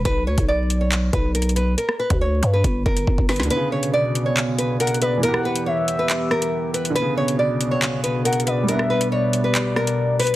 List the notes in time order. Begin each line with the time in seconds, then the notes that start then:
0.05 B1 B4, kick, closed hi-hat
0.27 D2 C#5
0.38 B1, kick, closed hi-hat
0.48 D5
0.70 closed hi-hat
0.81 C#5
0.92 clap, closed hi-hat
1.13 B1 B4, kick, closed hi-hat
1.35 A#4, closed hi-hat
1.42 closed hi-hat
1.49 closed hi-hat
1.56 B4, closed hi-hat
1.78 A#4, closed hi-hat
1.89 cross-stick
2.00 B4
2.10 D2, kick, closed hi-hat
2.21 C#5
2.43 G2, closed hi-hat
2.53 B4
2.64 G1, kick, closed hi-hat
2.86 G1 A#4, kick
2.97 closed hi-hat
3.07 G1, kick
3.18 G1, kick
3.29 B4, snare, closed hi-hat, open hi-hat
3.36 D2, snare, closed hi-hat
3.43 D3, closed hi-hat
3.50 B2 B3 F#4 B4, closed hi-hat
3.56 C#3
3.72 C#5
3.83 closed hi-hat
3.93 D5
4.15 closed hi-hat
4.26 C#5
4.37 clap, closed hi-hat
4.58 B4, closed hi-hat
4.80 A#4 F#5, closed hi-hat
4.87 closed hi-hat
4.94 closed hi-hat
5.02 B4 D5, closed hi-hat
5.18 E3
5.23 E3 B3 G4 A#4 F#5, closed hi-hat
5.28 G4
5.34 cross-stick
5.45 B4
5.56 closed hi-hat
5.66 C#5 E5
5.88 closed hi-hat
5.99 B4
6.09 clap, closed hi-hat
6.31 A#4, cross-stick
6.42 closed hi-hat
6.74 B4, closed hi-hat
6.85 closed hi-hat
6.90 D3
6.95 B2 B3 F#4 B4, closed hi-hat
7.01 C#3
7.18 C#5
7.28 closed hi-hat
7.39 D5
7.61 closed hi-hat
7.71 C#5
7.82 clap, closed hi-hat
8.04 B4, closed hi-hat
8.25 A#4 F#5, closed hi-hat
8.33 closed hi-hat
8.40 closed hi-hat
8.47 B4 D5, closed hi-hat
8.63 G3
8.68 B3 D4 G4 A#4 E5, closed hi-hat
8.74 B3
8.79 cross-stick
8.90 B4
9.01 closed hi-hat
9.12 C#5 D5
9.33 closed hi-hat
9.44 B4
9.55 clap, closed hi-hat
9.76 A#4, cross-stick
9.87 closed hi-hat
10.19 B4, closed hi-hat, open hi-hat
10.27 closed hi-hat